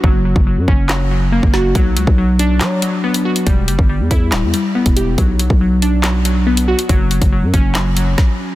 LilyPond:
<<
  \new Staff \with { instrumentName = "Synth keys" } { \clef bass \time 4/4 \key b \minor \tempo 4 = 140 fis8 fis8 fis8 cis'8 fis8 fis8 ais8 fis'8 | fis8 fis8 fis8 d'8 fis8 fis8 b8 fis'8 | g8 g8 g8 e'8 g8 g8 b8 g'8 | fis8 fis8 fis8 d'8 fis8 fis8 b8 fis'8 |
fis8 fis8 fis8 cis'8 fis8 fis4. | }
  \new Staff \with { instrumentName = "808-style bass" } { \clef bass \time 4/4 \key b \minor fis,,8. fis,,8 fis,16 fis,,4.~ fis,,16 fis,,8. | b,,8 cis,16 b,,4~ b,,16 fis8 r4. | e,,8 fis,,16 g,,8 e,16 e,8 d,,16 e,16 r8. e,,8. | b,,8. b,,2. r16 |
fis,,8. fis,,8 fis,16 fis,,4. r4 | }
  \new DrumStaff \with { instrumentName = "Drums" } \drummode { \time 4/4 bd8. bd16 r8 bd8 <hc sn>4 r16 bd16 sn8 | <hh bd>8 hh16 bd16 r8 hh8 <hc hh sn>8 hh8 r16 hh8 hh16 | <hh bd>8 hh16 bd16 r8 <hh bd>8 <hc hh sn>8 hh8 r16 <hh bd>16 hh8 | <hh bd>8 hh16 bd16 r8 hh8 <hc hh sn>8 hh8 r16 hh8 hh16 |
<hh bd>8 hh16 <hh bd>16 r8 <hh bd>8 <hc hh sn>8 hh8 <bd sn>4 | }
>>